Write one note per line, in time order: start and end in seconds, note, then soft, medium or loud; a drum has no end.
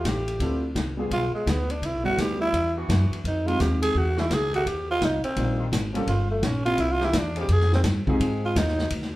0.00 0.37 F3 medium
0.00 0.37 A3 medium
0.00 0.37 E4 medium
0.00 0.37 G4 loud
0.04 0.39 A1 medium
0.04 0.64 G4 medium
0.04 kick soft
0.04 snare medium
0.04 hi-hat pedal medium
0.04 ride medium
0.28 ride medium
0.40 0.74 D2 medium
0.40 0.60 F3 medium
0.40 0.61 C4 medium
0.40 0.61 D4 medium
0.40 0.61 E4 medium
0.40 0.61 A4 medium
0.40 kick soft
0.40 ride medium
0.75 1.10 C2 medium
0.75 kick soft
0.75 snare medium
0.75 hi-hat pedal soft
0.75 ride medium
0.97 1.09 G3 medium
0.97 1.10 B3 medium
0.97 1.44 B3 medium
0.97 1.10 D4 medium
0.97 1.44 F4 medium
0.97 1.10 F4 medium
0.97 1.44 G4 medium
0.97 1.44 G#4 loud
0.97 1.10 G#4 medium
1.11 1.32 B1 medium
1.11 1.33 F4 loud
1.11 kick soft
1.11 ride medium
1.34 1.51 G#3 medium
1.46 1.81 D2 medium
1.46 1.73 B3 medium
1.46 kick soft
1.46 snare medium
1.46 hi-hat pedal medium
1.46 ride medium
1.70 1.87 D4 medium
1.70 ride medium
1.82 1.94 C2 medium
1.82 2.04 E4 medium
1.82 kick soft
1.82 ride medium
1.94 2.04 B1 medium
2.04 2.16 G1 medium
2.04 2.50 G3 medium
2.04 2.50 B3 medium
2.04 2.50 D4 medium
2.04 2.50 E4 medium
2.04 2.22 F#4 loud
2.04 2.51 F#4 medium
2.17 2.52 D2 medium
2.17 2.40 G4 loud
2.17 kick soft
2.17 snare medium
2.17 hi-hat pedal medium
2.17 ride medium
2.41 2.73 E4 loud
2.53 2.87 E2 medium
2.53 kick soft
2.53 ride medium
2.76 3.22 E3 loud
2.76 3.21 B3 loud
2.76 3.21 D4 loud
2.76 3.22 F#4 loud
2.89 3.10 F#2 loud
2.89 kick soft
2.89 snare medium
2.89 hi-hat pedal medium
2.89 ride medium
3.10 muted upright bass stroke soft
3.10 ride medium
3.24 3.58 F2 loud
3.24 3.48 D#4 medium
3.24 kick soft
3.24 ride medium
3.46 3.92 G#3 medium
3.46 3.92 C4 medium
3.46 3.92 D#4 medium
3.46 3.63 F4 loud
3.46 3.93 F4 medium
3.46 3.93 G4 medium
3.46 ride soft
3.60 3.94 D#2 medium
3.60 3.82 G4 medium
3.60 kick soft
3.60 snare medium
3.60 hi-hat pedal medium
3.60 ride medium
3.82 3.99 G#4 loud
3.82 ride medium
3.95 4.29 E2 medium
3.95 4.21 F#4 medium
3.95 kick soft
4.16 4.25 E3 medium
4.16 4.25 G#3 medium
4.16 4.25 D4 medium
4.16 4.34 E4 medium
4.16 4.25 F#4 loud
4.16 snare medium
4.30 4.65 C#2 medium
4.30 4.54 G#4 loud
4.30 kick soft
4.30 snare medium
4.30 hi-hat pedal medium
4.30 ride medium
4.51 4.60 D#3 medium
4.51 4.61 G3 medium
4.51 4.60 D4 medium
4.51 4.69 F#4 loud
4.51 4.61 G4 loud
4.51 ride medium
4.66 5.00 D#2 medium
4.66 4.89 G4 medium
4.66 kick soft
4.66 ride medium
4.90 5.06 F4 loud
5.01 5.22 C2 medium
5.01 5.23 D#4 medium
5.01 kick soft
5.01 snare medium
5.01 hi-hat pedal medium
5.01 ride medium
5.24 5.69 C4 loud
5.24 muted upright bass stroke soft
5.24 ride medium
5.36 5.71 A#1 medium
5.36 5.57 G3 medium
5.36 5.57 A#3 medium
5.36 5.57 D4 medium
5.36 5.57 D#4 medium
5.36 5.58 F4 medium
5.36 kick soft
5.36 ride medium
5.57 5.67 D#3 medium
5.57 5.66 G3 medium
5.57 5.67 D4 medium
5.57 5.67 F4 loud
5.72 6.06 G#1 medium
5.72 kick soft
5.72 snare medium
5.72 hi-hat pedal medium
5.72 ride medium
5.93 6.02 F3 loud
5.93 6.06 G3 medium
5.93 6.03 A#3 medium
5.93 6.07 A#3 medium
5.93 6.02 C#4 medium
5.93 6.07 C#4 medium
5.93 6.07 F4 medium
5.93 6.02 G4 loud
5.93 6.07 A4 medium
5.93 ride medium
6.07 6.42 G1 medium
6.07 6.29 F4 medium
6.07 kick soft
6.07 ride medium
6.31 6.46 A3 medium
6.43 6.77 A#1 medium
6.43 6.65 C#4 medium
6.43 kick soft
6.43 snare medium
6.43 hi-hat pedal medium
6.43 ride medium
6.65 6.77 A#3 medium
6.65 6.77 C4 medium
6.65 6.78 D4 medium
6.65 6.78 E4 medium
6.65 6.83 F4 loud
6.65 6.78 G4 medium
6.65 ride medium
6.78 7.12 C2 medium
6.78 6.94 E4 loud
6.78 kick soft
6.78 ride medium
6.92 7.06 F4 loud
6.99 7.09 E3 loud
6.99 7.08 A#3 loud
6.99 7.09 C4 loud
6.99 7.09 G4 loud
6.99 snare soft
7.05 7.20 E4 medium
7.13 7.48 E2 loud
7.13 kick soft
7.13 snare medium
7.13 hi-hat pedal medium
7.13 ride medium
7.18 7.39 D4 medium
7.35 7.45 F3 loud
7.35 7.44 C4 medium
7.35 7.44 D#4 loud
7.35 7.45 G#4 loud
7.35 ride medium
7.40 7.53 G4 loud
7.49 7.83 F2 medium
7.49 7.73 G#4 loud
7.49 kick soft
7.49 ride medium
7.61 snare soft
7.72 7.81 C4 loud
7.72 snare medium
7.84 8.06 G2 medium
7.84 kick soft
7.84 snare medium
7.84 hi-hat pedal medium
7.84 ride medium
8.07 8.53 F3 loud
8.07 8.19 G#3 medium
8.07 8.19 C4 medium
8.07 8.53 C4 loud
8.07 8.53 D#4 loud
8.07 8.19 D#4 medium
8.07 8.19 F4 medium
8.07 8.20 G4 medium
8.07 8.53 G#4 loud
8.07 muted upright bass stroke soft
8.07 kick medium
8.20 8.54 G#2 loud
8.20 kick soft
8.20 ride medium
8.45 8.60 F4 loud
8.56 8.90 D#2 loud
8.56 8.92 D#4 loud
8.56 kick soft
8.56 snare medium
8.56 hi-hat pedal medium
8.56 ride medium
8.68 snare soft
8.79 snare medium
8.90 9.16 D2 medium
8.90 kick soft
8.90 ride medium
9.02 snare soft